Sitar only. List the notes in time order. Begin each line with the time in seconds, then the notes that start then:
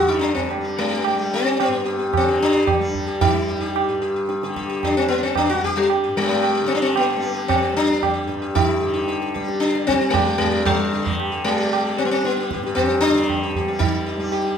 0.08 D#4
0.19 D4 D#4
0.35 C4
0.49 G4
0.64 G4
0.79 G#3
0.91 G4
1.04 G4
1.19 G4
1.34 C4
1.46 G4
1.60 C4
1.71 B3 G4
1.85 G4
1.99 G4
2.17 C4
2.28 G4
2.42 D4
2.55 G4
2.67 G4
2.81 G4
3.07 G4
3.21 D#4
3.33 G4
3.48 G4
3.61 G4
3.88 G4
4.02 G4
4.16 G4
4.29 G4
4.44 G4
4.56 G4
4.70 G4
4.85 D4
4.97 C4
5.08 B3
5.23 C4
5.37 D4
5.50 F#4
5.64 G4
5.77 G3
5.90 G4
6.04 G4
6.17 G3
6.28 G#3 G4
6.42 G4
6.55 G4
6.68 C4
6.75 D4
6.82 C4
6.97 B3
7.10 G4
7.22 G4
7.34 G4
7.48 C4
7.61 G4
7.76 D4
8.02 G4
8.14 G4
8.27 G4
8.42 G4
8.55 D#4
8.68 G4
8.80 G4
8.94 G4
9.08 G4
9.22 G4
9.34 G4
9.60 D4
9.75 G4
9.87 C4
10.10 G#3
10.27 G4
10.38 G#3
10.65 G3
10.93 G4
11.05 G4
11.32 G4
11.44 G#3
11.59 G4
11.73 G4
11.86 G4
11.98 C4
12.05 B3
12.11 C4
12.25 B3
12.40 G4
12.53 G4
12.66 G4
12.75 C4
12.92 G4
13.01 D4
13.17 G4
13.31 G4
13.43 G4
13.53 C4 G4
13.68 G4
13.79 D#4
14.06 G4
14.20 G4
14.32 G4
14.47 G4